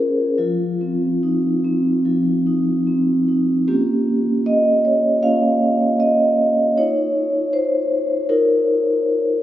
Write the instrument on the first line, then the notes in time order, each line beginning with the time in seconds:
vibraphone
Already playing: C#4 F4 G#4 A#4 C5
0.38 F3 F4
0.81 C4
1.23 D#4
1.64 C4
2.05 F3
2.47 D#4
2.87 C4
3.28 D#4
3.68 A#3 C#4 F4 G4
4.46 D#5
4.85 C#5
5.23 A#3 C#4 F4 F5
6.00 D#5
6.77 D#4 F4 C#5
7.53 C5
8.29 D#4 F4 A#4